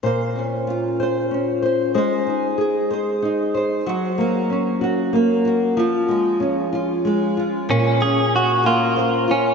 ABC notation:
X:1
M:6/8
L:1/8
Q:3/8=63
K:Bbm
V:1 name="Clean electric guitar"
z6 | z6 | z6 | z6 |
D A G F2 D |]
V:2 name="Nylon-string guitar"
[B,,c] D F c D c | [A,c] E A c E c | [G,G] B, D G B, G | [F,F] A, D F A, F |
B,, D2 B, c F |]